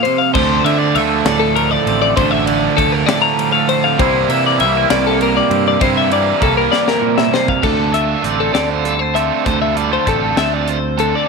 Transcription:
Already playing: F3 A#3
0.03 C3 C5, ride
0.18 F5
0.34 D2 D3 F3 A3 D4 C5, kick, crash
0.64 D3 E5, ride
0.78 D5
0.95 D2 A3 E5, ride
1.25 D2 A2 D5, snare, ride
1.40 A4
1.56 A3 A#4, ride
1.71 D5
1.86 A1 C4, ride
2.02 D5
2.16 A1 D2 D3 F3 A3 D4 C5, kick, ride
2.31 E5
2.46 D3 D5, ride
2.77 D2 A3 A4, kick, ride
2.92 A#4
3.06 A2 D5, snare, ride
3.22 A#5
3.39 G3, ride
3.52 A3 F5
3.69 A3 C5, ride
3.84 C4 F5
3.98 C2 C3 E3 G3 A#3 C4 E4 C5, kick, ride
4.02 E4
4.29 C3 E3 E5, ride
4.46 D5
4.59 C2 G3 E5, ride
4.77 A#3
4.89 C2 C3 D5, snare, ride
5.07 A4
5.21 A#3 A#4, ride
5.37 D5
5.50 G2 C4, ride
5.68 D5
5.80 G2 C3 G3 A#3 E4 C5, kick, ride
5.97 E5
6.11 E3 D5, ride
6.40 C2 A#3 A4, kick, ride
6.57 A#4
6.72 D5, snare
6.88 A#4, snare
7.01 A#2
7.18 E5, snare
7.31 C3 C5, snare
7.48 F5, kick
7.62 D2 A3 D4 F4 A4, kick, crash
7.92 A3 D4 F4 A4 E5, closed hi-hat
8.22 A1 A3 C4 D4 F4 A4 D5, closed hi-hat
8.40 A4
8.53 D2 D3 A3 D4 F4 A4 D5, snare, closed hi-hat
8.70 C5
8.84 G3 A4, closed hi-hat
8.99 A3 C5
9.14 A3 C4 D4 F4 A4 E5, closed hi-hat
9.44 D2 A3 D4 F4 A4 C5, kick, closed hi-hat
9.62 E5
9.75 G3 A3 D4 F4 A4 D5, closed hi-hat
9.91 A3 C5
10.06 A1 A3 C4 D4 F4 A4, kick, closed hi-hat
10.37 D2 A3 D4 F4 A4 E5, snare, closed hi-hat
10.54 D5
10.68 C5, closed hi-hat
10.97 D2 A3 D4 F4 A4, closed hi-hat
11.15 D5

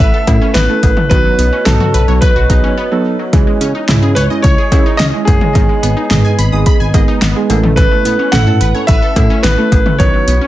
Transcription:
Already playing: A3 C#4 E4 A4 B4
0.00 A1 B4 E5, kick
0.14 A4
0.27 A2 A3 C#4 E4 A4, kick, closed hi-hat, cowbell
0.42 C#4
0.54 A1 B3 B4, snare, closed hi-hat
0.69 A3 C#4 E4 A4
0.83 A1, kick, closed hi-hat, cowbell
0.97 A3, mid tom
1.10 B1 D#3 F#3 B3 D#4 F#4 B4 C#5 D#5, kick, closed hi-hat
1.25 F#3
1.39 B1 B3, closed hi-hat
1.53 C#4
1.65 B1 F#3 B3 D#4 F#4 A4, snare, closed hi-hat, mid tom
1.80 F#4, mid tom
1.94 B1 B4, closed hi-hat
2.08 B1 F#3 B3 D#4 F#4 C#5
2.21 B4, kick, closed hi-hat
2.36 B1 F#4
2.50 B1 F#3 B3 D#4 G#4, kick, closed hi-hat
2.64 C#4
2.77 B3
2.91 F#3 B3 D#4 A4
3.19 F#3
3.33 C#2 E3 G#3 C#4 E4 G#4, kick, closed hi-hat
3.47 G#3
3.61 C#3 C#4, closed hi-hat
3.75 D#4
3.89 C#2 G#3 C#4 E4 G#4, snare, closed hi-hat, mid tom
4.02 C#3 G#4
4.15 C#2 B4 C#5, closed hi-hat
4.30 G#3 C#4 E4 G#4 D#5
4.42 C#2 C#5, kick, closed hi-hat
4.58 G#4
4.72 C#3 G#3 C#4 E4 G#4, kick, closed hi-hat, cowbell
4.86 D#4
4.97 C#2 C#4 D#5, snare, closed hi-hat
5.13 G#3 C#4 E4 G#4
5.25 F#1 G#4, kick, closed hi-hat, cowbell
5.41 G#3, mid tom
5.55 G#1 D#3 G#3 B3 D#4 G#4 B4, kick, closed hi-hat
5.69 G#3
5.83 G#1 B3, closed hi-hat
5.97 D#4
6.11 G#1 G#3 B3 D#4 G#4 D#5, snare, closed hi-hat, mid tom
6.25 G#5
6.38 G#1 B5, closed hi-hat
6.52 G#1 G#3 B3 D#4 G#4 D#6
6.66 B5, kick, closed hi-hat
6.80 G#1 G#5
6.94 G#1 G#3 B3 D#4 G#4 D#5, kick, closed hi-hat, cowbell
7.08 D#4
7.22 G#1 B3, snare, closed hi-hat
7.36 G#3 B3 D#4 G#4
7.49 A1 A3 C#4 E4 A4, closed hi-hat, cowbell
7.63 A3, mid tom
7.76 E3 B4, kick, closed hi-hat
7.91 A3
8.05 A2 B3, closed hi-hat
8.19 C#4
8.32 A1 A3 C#4 E4 A4 F#5, snare, closed hi-hat, mid tom
8.47 A2 A4
8.61 A1 B4, closed hi-hat
8.75 A3 C#4 E4 A4 C#5
8.87 A1 B4 E5, kick, closed hi-hat
9.02 A4
9.16 A2 A3 C#4 E4 A4, kick, closed hi-hat, cowbell
9.30 C#4
9.43 A1 B3 B4, snare, closed hi-hat
9.58 A3 C#4 E4 A4
9.72 A1, kick, closed hi-hat, cowbell
9.86 A3, mid tom
9.99 B1 D#3 B3 D#4 F#4 B4 C#5, kick, closed hi-hat
10.14 F#3
10.28 B1 B3, closed hi-hat
10.41 C#4

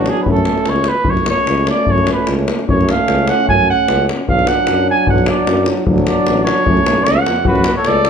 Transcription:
Already playing: F#3 D4 F#4
0.06 G#4, davul high
0.17 davul high
0.22 B4
0.26 F#2 A3 C#4 A4, davul low
0.37 davul high
0.45 davul high
0.58 davul high
0.66 C#2 C#5, davul high
0.76 davul high
0.84 davul high
0.88 B4
1.04 F#2 C#4, davul low
1.09 A3 C#5
1.17 davul high
1.26 C#5, davul high
1.47 C#2, davul high
1.58 davul high
1.67 D5, davul high
1.77 davul high
1.87 F#2 C#5, davul low
1.98 davul high
2.07 davul high
2.13 B4
2.27 C#2, davul high
2.39 davul high
2.48 davul high
2.59 davul high
2.68 F#2 A3 C#4 C#5, davul low
2.81 davul high
2.89 F5, davul high
3.08 C#2, davul high
3.19 davul high
3.28 F#5, davul high
3.40 davul high
3.48 F#2 G#5, davul low
3.70 F#5
3.88 C#2, davul high
4.09 davul high
4.28 B1 F#3 D4 F5, davul low
4.39 davul high
4.47 F#5, davul high
4.67 F#2, davul high
4.77 davul high
4.90 G#5
4.97 davul high
5.07 B1 F#5, davul low
5.18 davul high
5.26 D5, davul high
5.47 F#2, davul high
5.57 davul high
5.66 davul high
5.77 davul high
5.87 D2 F#3 D4, davul low
5.98 davul high
6.07 D5, davul high
6.27 A1, davul high
6.37 davul high
6.44 C#5, davul high
6.58 davul high
6.66 F#2 A3 C#4, davul low
6.77 davul high
6.86 B1, davul high
6.97 davul high
7.04 C#2 F#5, davul high
7.26 F2, davul high
7.36 davul high
7.45 F#2 A3 C#4 F#4 B4, davul low
7.55 davul high
7.64 davul high
7.76 A4 C#5
7.85 C#2 A3 C#4 A4 D5, davul high
8.04 A4, davul high

